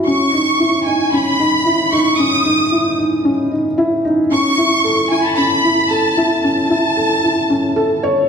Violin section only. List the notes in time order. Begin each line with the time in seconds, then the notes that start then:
0.06 C#6
0.87 G#5
1.12 B5
1.92 C#6
2.18 D#6
4.32 C#6
5.11 G#5
5.21 A5 B5
5.37 B5
5.91 A5
6.44 A5